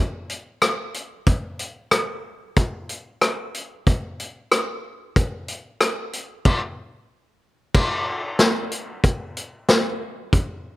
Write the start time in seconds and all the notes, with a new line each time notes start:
0.30 closed hi-hat
0.62 cross-stick, closed hi-hat
0.94 closed hi-hat
1.26 kick, closed hi-hat
1.59 closed hi-hat
1.91 cross-stick, closed hi-hat
2.56 kick, closed hi-hat
2.89 closed hi-hat
3.21 cross-stick, closed hi-hat
3.54 closed hi-hat
3.87 kick, closed hi-hat
4.20 closed hi-hat
4.52 cross-stick, closed hi-hat
5.16 kick, closed hi-hat
5.48 closed hi-hat
5.81 cross-stick, closed hi-hat
6.13 closed hi-hat
6.45 kick, crash
7.75 kick, crash
8.39 snare, closed hi-hat
8.72 closed hi-hat
9.04 kick, closed hi-hat
9.37 closed hi-hat
9.69 snare, closed hi-hat
10.33 kick, closed hi-hat